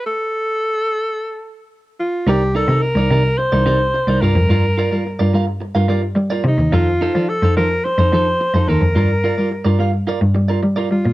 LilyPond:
<<
  \new Staff \with { instrumentName = "Clean electric guitar" } { \time 4/4 \key a \major \tempo 4 = 108 r1 | \key c \dorian <ees' bes' d''>16 r16 <ees' bes' d''>16 <ees' bes' ees''>16 r16 <ees' bes' d''>16 <ees' bes' d''>16 r8 <ees' bes' d''>16 <ees' bes' d''>16 r8 <ees' bes' d''>16 <f' bes' d''>16 r16 | <f' bes' d''>16 r16 <f' bes' d''>16 <f' bes' d''>16 r16 <f' bes' d''>16 <f' bes' f''>16 r8 <f' bes' f''>16 <f' bes' d''>16 r8 <f' bes' d''>16 r8 | <ees' a' c''>16 r16 <ees' a' c''>16 <ees' a' d''>16 r16 <ees' a' c''>16 <ees' a' c''>16 r8 <ees' a' c''>16 <ees' a' c''>16 r8 <ees' a' c''>16 <ees' a' c''>16 r16 |
<f' bes' d''>16 r16 <f' bes' d''>16 <f' bes' d''>16 r16 <f' bes' d''>16 <f' bes' f''>16 r16 <f' bes' d''>16 r8 <f' bes' d''>16 r16 <f' bes' d''>16 r8 | }
  \new Staff \with { instrumentName = "Alto saxophone" } { \time 4/4 \key a \major a'2. r8 eis'8 | \key c \dorian g'8 a'8 bes'4 c''4. bes'8~ | bes'4. r2 ees'8 | f'4 a'8 bes'8 c''4. bes'8~ |
bes'4. r2 f'8 | }
  \new Staff \with { instrumentName = "Cello" } { \clef bass \time 4/4 \key a \major r1 | \key c \dorian c,8 r16 c16 r16 c,16 c8 r16 c,16 c8 r16 c,16 g,16 f,16 | g,8 r16 g16 r16 g,16 g8 r16 g,16 g8 g16 r16 c16 ees,16 | f,8 r16 f16 r16 f,16 f8 r16 f,16 f8 r16 f,16 ees,16 f,16 |
g,8 r16 g16 r16 g,16 g8 r16 g,16 g8 g16 r16 g16 bes,16 | }
>>